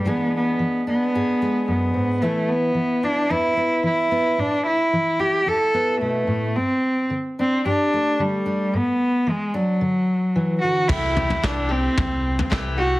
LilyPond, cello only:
\new Staff \with { instrumentName = "Cello" } { \time 4/4 \key a \dorian \tempo 4 = 111 b8 b4 b4. b4 | a8 b4 d'8 e'4 e'4 | d'8 e'4 g'8 a'4 a4 | c'4 r8 c'8 d'4 g4 |
b4 gis8 fis2 fis'8 | e'4 d'8 c'4. r8 fis'8 | }